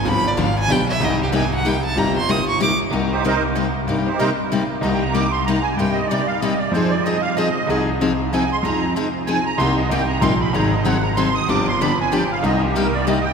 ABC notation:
X:1
M:3/4
L:1/8
Q:"Swing" 1/4=189
K:Cm
V:1 name="Violin"
=b d f a g =e | e G a ^f g =a | b c' e' _d' =d' z | z6 |
z6 | z6 | z6 | z6 |
z6 | z6 | z6 | z6 |
z6 | z6 |]
V:2 name="Accordion"
z6 | z6 | z6 | z [CEGc] [EBce] z3 |
z [CEGc] [EBce] z3 | (3e g b d' c' b a | g e d f e d | c d e f e2- |
e z3 a c' | b2 z2 a b | c' e g b c' =b | b e _g b c' e' |
d' c' =b a g f | e G B d e g |]
V:3 name="Steel-string acoustic guitar"
[D,F,=B,DG] z [D,F,B,DG] z [D,F,B,DG] z | [C,G,B,EG] z [C,G,B,EG] z [C,G,B,EG] z | [C,G,B,EG] z [C,G,B,EG] z [C,G,B,EG] z | [C,G,B,EG] z [C,G,B,EG] z [C,G,B,EG] z |
[C,G,B,EG] z [C,G,B,EG] z [C,G,B,EG] z | [C,G,B,EG] z [C,G,B,EG] z [C,G,B,EG] z | [C,G,B,EG] z [C,G,B,EG] z [C,G,B,EG] z | [F,CEA] z [F,CEA] z [F,CEA] z |
[F,CEA] z [F,CEA] z [F,CEA] z | [F,CEA] z [F,CEA] z [F,CEA] z | [C,G,B,EG] z [C,G,B,EG] z [C,G,B,EG] z | [E,_G,CEA] z [E,G,CEA] z [E,G,CEA] z |
[D,F,=B,DG] z [D,F,B,DG] z [D,F,B,DG] z | [C,G,B,EG] z [C,G,B,EG] z [C,G,B,EG] z |]
V:4 name="Grand piano" clef=bass
G,,,2 A,,,2 =B,,,2 | C,,6 | G,,,6 | C,,6 |
G,,6 | C,,6 | G,,6 | F,,6 |
C,,6 | F,,6 | C,,2 C,,2 B,,,2 | A,,,6 |
G,,,6 | C,,6 |]